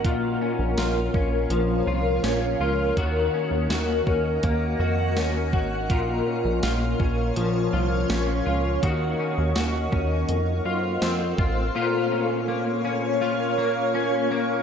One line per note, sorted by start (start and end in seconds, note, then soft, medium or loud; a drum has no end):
0.00 2.09 A#3 medium
0.00 0.41 C#4 medium
0.00 8.79 A#4 medium
0.00 5.86 A#5 medium
0.05 0.37 A#1 loud
0.05 2.97 A#2 medium
0.05 0.77 F4 medium
0.05 2.95 C#5 medium
0.05 2.94 F5 medium
0.05 kick medium
0.05 closed hi-hat medium
0.41 1.14 C#4 soft
0.59 0.75 A#1 medium
0.77 1.10 A#1 medium
0.77 1.86 F4 medium
0.77 snare loud
0.77 closed hi-hat medium
1.14 1.46 A#1 medium
1.14 2.23 C#4 soft
1.14 kick medium
1.50 1.83 A#1 medium
1.50 2.97 F3 medium
1.50 closed hi-hat medium
1.87 2.19 C2 loud
1.87 2.59 F4 medium
2.23 2.56 A#1 medium
2.23 3.33 C#4 medium
2.23 snare medium
2.23 closed hi-hat medium
2.60 2.92 C#2 medium
2.60 2.97 F4 medium
2.96 3.29 D#2 medium
2.96 5.90 D#3 medium
2.96 3.69 F#4 medium
2.96 5.87 D#5 medium
2.96 5.87 F#5 medium
2.96 kick medium
2.96 closed hi-hat medium
3.34 4.06 C#4 soft
3.51 3.68 D#2 medium
3.69 4.02 D#2 medium
3.69 4.79 F#4 medium
3.69 snare loud
3.69 closed hi-hat medium
4.07 4.39 D#2 medium
4.07 5.16 C#4 medium
4.07 kick medium
4.43 4.76 D#2 medium
4.43 7.93 A#3 medium
4.43 kick medium
4.43 closed hi-hat medium
4.79 5.18 F2 medium
4.79 5.52 F#4 medium
5.16 5.54 D#2 loud
5.16 6.26 C#4 medium
5.16 snare medium
5.16 closed hi-hat medium
5.53 5.91 G#1 medium
5.53 5.90 F#4 medium
5.53 kick medium
5.89 6.22 A#1 loud
5.89 8.82 A#2 medium
5.89 6.62 F4 medium
5.89 8.79 C#5 medium
5.89 8.80 F5 medium
5.89 10.25 C#6 medium
5.89 kick medium
5.89 closed hi-hat medium
6.27 6.99 C#4 medium
6.45 6.61 A#1 medium
6.63 6.95 A#1 medium
6.63 7.72 F4 medium
6.63 snare loud
6.63 closed hi-hat medium
7.00 7.32 A#1 loud
7.00 8.09 C#4 medium
7.00 kick medium
7.36 7.69 A#1 loud
7.36 8.82 F3 medium
7.36 closed hi-hat medium
7.73 8.05 C2 medium
7.73 8.45 F4 medium
8.09 8.42 A#1 medium
8.09 8.90 C#4 medium
8.09 snare loud
8.09 closed hi-hat medium
8.46 8.78 C#2 medium
8.46 8.82 F4 medium
8.82 9.15 D#2 loud
8.82 10.36 D#3 medium
8.82 9.54 F#4 medium
8.82 10.27 A#4 medium
8.82 10.27 D#5 medium
8.82 10.27 F#5 medium
8.82 kick medium
8.82 closed hi-hat medium
9.20 9.91 C#4 soft
9.38 9.54 D#2 medium
9.55 9.88 D#2 medium
9.55 10.36 F#4 soft
9.55 snare loud
9.55 closed hi-hat medium
9.92 10.25 D#2 medium
9.92 10.36 C#4 soft
9.92 kick medium
10.29 10.61 F2 medium
10.29 11.74 A4 medium
10.29 11.74 C5 medium
10.29 11.74 F5 medium
10.29 11.74 C6 medium
10.29 closed hi-hat medium
10.65 10.98 F#2 medium
10.65 11.38 F4 medium
11.02 11.34 F2 loud
11.02 11.82 C4 medium
11.02 snare loud
11.02 closed hi-hat medium
11.38 11.71 A1 medium
11.38 11.75 F4 medium
11.38 kick medium
11.75 14.63 A#2 medium
11.75 13.20 F4 medium
11.75 14.63 A#4 medium
11.75 14.63 C#5 medium
11.75 14.63 F5 medium
11.75 14.63 C#6 loud
12.12 12.84 C#4 medium
12.48 13.57 A#3 medium
12.85 13.94 C#4 medium
13.21 14.63 F4 medium
13.58 14.30 A#3 medium
13.94 14.63 C#4 medium
14.31 14.63 A#3 medium